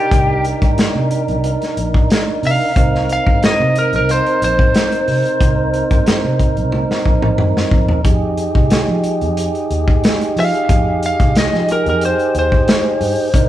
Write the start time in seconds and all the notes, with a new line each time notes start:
Already playing: D4 D#4 G4 A#4
0.11 C2, kick, closed hi-hat
0.45 closed hi-hat
0.62 G2, kick, closed hi-hat
0.78 snare, closed hi-hat
0.95 C3
1.11 closed hi-hat
1.28 C2, closed hi-hat
1.44 closed hi-hat
1.62 snare, closed hi-hat
1.77 A#1, closed hi-hat
1.94 kick
2.10 snare, closed hi-hat
2.43 C3 F5, open hi-hat
2.76 C2 C4 D#4 A#4, kick, closed hi-hat
2.95 snare
3.09 F5, closed hi-hat
3.27 G2, kick
3.43 D#5, snare, closed hi-hat
3.60 C3
3.76 A#4, closed hi-hat
3.93 C2 A#4, closed hi-hat
4.09 C5, closed hi-hat
4.26 closed hi-hat
4.42 A#1 C5, closed hi-hat
4.59 kick
4.74 snare, closed hi-hat
4.92 closed hi-hat
5.08 C3, open hi-hat
5.25 closed hi-hat
5.41 C2, kick, closed hi-hat
5.74 closed hi-hat
5.91 G2, kick, closed hi-hat
6.06 snare, closed hi-hat
6.24 C3
6.39 kick, closed hi-hat
6.57 C2, closed hi-hat
6.72 high tom
6.91 snare
7.05 A#1, kick
7.22 mid tom
7.38 G2, mid tom
7.57 snare
7.71 F2, kick
7.89 floor tom
8.04 F2 D#4 G4 G#4, kick, closed hi-hat
8.38 closed hi-hat
8.55 C2, kick
8.70 snare, closed hi-hat
8.88 F3
9.04 closed hi-hat
9.21 F2, closed hi-hat
9.37 closed hi-hat
9.55 closed hi-hat
9.71 D#2, closed hi-hat
9.88 kick
10.04 snare, closed hi-hat
10.21 closed hi-hat
10.36 F3 F5, open hi-hat
10.54 closed hi-hat
10.69 F2, kick, closed hi-hat
11.03 F5, closed hi-hat
11.20 C2, kick, closed hi-hat
11.35 D#5, snare, closed hi-hat
11.53 F3, snare
11.69 A#4, closed hi-hat
11.86 F2 A#4, closed hi-hat
12.01 closed hi-hat
12.05 C5
12.19 closed hi-hat
12.35 D#2, closed hi-hat
12.39 C5
12.52 kick
12.68 snare, closed hi-hat
13.01 G2, open hi-hat
13.34 C2 D4 D#4 A#4, kick, closed hi-hat